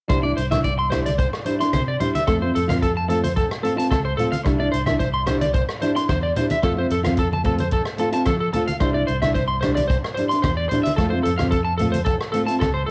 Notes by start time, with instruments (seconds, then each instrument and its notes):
0.08 fingered electric bass C2, steel-string acoustic guitar G3 D4 E4, clean electric guitar C5, kick, cross-stick, closed hi-hat
0.23 steel-string acoustic guitar D4 E4, clean electric guitar D5
0.37 fingered electric bass C2, clean electric guitar C5, closed hi-hat
0.51 steel-string acoustic guitar D4 E4, clean electric guitar E5, cross-stick, closed hi-hat, high conga, low conga
0.64 clean electric guitar D5, kick, closed hi-hat
0.79 clean electric guitar C6
0.90 steel-string acoustic guitar G3 D4 E4, clean electric guitar C5, cross-stick, closed hi-hat, low conga
1.06 clean electric guitar D5, closed hi-hat, high conga
1.18 clean electric guitar C5, kick, closed hi-hat
1.33 cross-stick
1.45 steel-string acoustic guitar G3 D4 E4, clean electric guitar C5, closed hi-hat
1.60 steel-string acoustic guitar D4 E4, clean electric guitar C6, closed hi-hat
1.73 fingered electric bass C3, clean electric guitar C5, kick, cross-stick, closed hi-hat, high conga
1.88 clean electric guitar D5
2.00 steel-string acoustic guitar G3 D4 E4, clean electric guitar C5, closed hi-hat, low conga
2.15 clean electric guitar E5, closed hi-hat, high conga
2.27 fingered electric bass F2, steel-string acoustic guitar A3 C4, clean electric guitar A4, muted steel-string acoustic guitar stroke, kick, cross-stick, closed hi-hat
2.41 steel-string acoustic guitar C4 F4, clean electric guitar C5
2.55 fingered electric bass F2, clean electric guitar A4, closed hi-hat
2.67 steel-string acoustic guitar C4 F4, clean electric guitar F5, cross-stick, closed hi-hat, high conga, low conga
2.82 clean electric guitar A4, kick, closed hi-hat
2.97 clean electric guitar A5
3.08 steel-string acoustic guitar A3 C4 F4, clean electric guitar A4, closed hi-hat
3.24 clean electric guitar C5, closed hi-hat, high conga
3.36 clean electric guitar A4, kick, closed hi-hat
3.51 cross-stick
3.62 steel-string acoustic guitar A3 C4 F4, clean electric guitar A4, closed hi-hat
3.76 steel-string acoustic guitar C4 F4, clean electric guitar A5, closed hi-hat
3.91 fingered electric bass C#2, clean electric guitar A4, kick, cross-stick, closed hi-hat, high conga
4.05 clean electric guitar C5
4.17 steel-string acoustic guitar A3 C4 F4, clean electric guitar A4, closed hi-hat, low conga
4.32 clean electric guitar F5, closed hi-hat, high conga
4.44 fingered electric bass C2, steel-string acoustic guitar G3 D4 E4, muted clean electric guitar stroke, kick, cross-stick, closed hi-hat
4.59 steel-string acoustic guitar D4 E4, clean electric guitar D5
4.72 fingered electric bass C2, clean electric guitar C5, closed hi-hat
4.86 steel-string acoustic guitar D4 E4, clean electric guitar E5, cross-stick, closed hi-hat, high conga, low conga
4.99 clean electric guitar C5, kick, closed hi-hat
5.14 clean electric guitar C6
5.27 steel-string acoustic guitar G3 D4 E4, clean electric guitar C5, cross-stick, closed hi-hat, low conga
5.41 clean electric guitar D5, closed hi-hat, high conga
5.54 clean electric guitar C5, kick, closed hi-hat
5.69 cross-stick
5.81 steel-string acoustic guitar G3 D4 E4, clean electric guitar C5, closed hi-hat
5.95 steel-string acoustic guitar D4 E4, clean electric guitar C6, closed hi-hat
6.09 fingered electric bass E2, clean electric guitar C5, kick, cross-stick, closed hi-hat, high conga
6.23 clean electric guitar D5
6.36 steel-string acoustic guitar G3 D4 E4, clean electric guitar C5, closed hi-hat, low conga
6.50 clean electric guitar E5, closed hi-hat, high conga
6.62 fingered electric bass F2, steel-string acoustic guitar A3 C4 F4, clean electric guitar A4, kick, cross-stick, closed hi-hat
6.77 steel-string acoustic guitar C4 F4, clean electric guitar C5
6.90 fingered electric bass F2, clean electric guitar A4, closed hi-hat
7.03 steel-string acoustic guitar C4 F4, clean electric guitar F5, cross-stick, closed hi-hat, high conga, low conga
7.17 clean electric guitar A4, kick, closed hi-hat
7.33 clean electric guitar A5, high conga
7.43 steel-string acoustic guitar A3 C4 F4, clean electric guitar A4, kick, closed hi-hat, low conga
7.58 clean electric guitar C5, closed hi-hat, high conga
7.71 clean electric guitar A4, kick, closed hi-hat
7.85 cross-stick
7.98 steel-string acoustic guitar A3 C4 F4, clean electric guitar A4, closed hi-hat
8.12 steel-string acoustic guitar C4 F4, clean electric guitar A5, closed hi-hat
8.26 fingered electric bass F3, clean electric guitar A4, kick, cross-stick, closed hi-hat, high conga
8.40 clean electric guitar A4
8.53 steel-string acoustic guitar A3 C4 F4, clean electric guitar A4, closed hi-hat, low conga
8.68 clean electric guitar F5, closed hi-hat, high conga
8.80 fingered electric bass C2, steel-string acoustic guitar G3 D4 E4, clean electric guitar C5, kick, cross-stick, closed hi-hat
8.94 steel-string acoustic guitar D4 E4, clean electric guitar D5
9.07 fingered electric bass C2, clean electric guitar C5, closed hi-hat
9.22 steel-string acoustic guitar D4 E4, clean electric guitar E5, cross-stick, closed hi-hat, high conga, low conga
9.34 clean electric guitar C5, kick, closed hi-hat
9.48 clean electric guitar C6
9.61 steel-string acoustic guitar G3 D4 E4, clean electric guitar C5, cross-stick, closed hi-hat, low conga
9.75 clean electric guitar D5, closed hi-hat, high conga
9.88 clean electric guitar C5, kick, closed hi-hat
10.04 cross-stick
10.15 steel-string acoustic guitar G3 D4, clean electric guitar C5, closed hi-hat
10.20 steel-string acoustic guitar E4
10.29 steel-string acoustic guitar D4, clean electric guitar C6, closed hi-hat
10.42 fingered electric bass E2, clean electric guitar C5, kick, cross-stick, closed hi-hat, high conga
10.57 clean electric guitar D5
10.69 steel-string acoustic guitar G3, clean electric guitar C5, closed hi-hat, low conga
10.73 steel-string acoustic guitar D4 E4
10.83 clean electric guitar E5, closed hi-hat, high conga
10.96 fingered electric bass F2, steel-string acoustic guitar A3 C4, clean electric guitar A4, kick, cross-stick, closed hi-hat
11.01 steel-string acoustic guitar F4
11.10 steel-string acoustic guitar F4, clean electric guitar C5
11.15 steel-string acoustic guitar C4
11.23 fingered electric bass F2, clean electric guitar A4, closed hi-hat
11.38 steel-string acoustic guitar C4 F4, clean electric guitar F5, cross-stick, closed hi-hat, high conga, low conga
11.51 clean electric guitar A4, kick, closed hi-hat
11.65 clean electric guitar A5
11.78 steel-string acoustic guitar A3 C4, clean electric guitar A4, closed hi-hat, low conga
11.82 steel-string acoustic guitar F4
11.92 clean electric guitar C5, closed hi-hat, high conga
12.05 clean electric guitar A4, kick, closed hi-hat
12.21 cross-stick
12.32 steel-string acoustic guitar A3 C4 F4, clean electric guitar A4, closed hi-hat
12.47 steel-string acoustic guitar C4 F4, clean electric guitar A5, closed hi-hat
12.60 fingered electric bass C#2, clean electric guitar A4, kick, cross-stick, closed hi-hat, high conga
12.74 clean electric guitar C5
12.86 clean electric guitar A4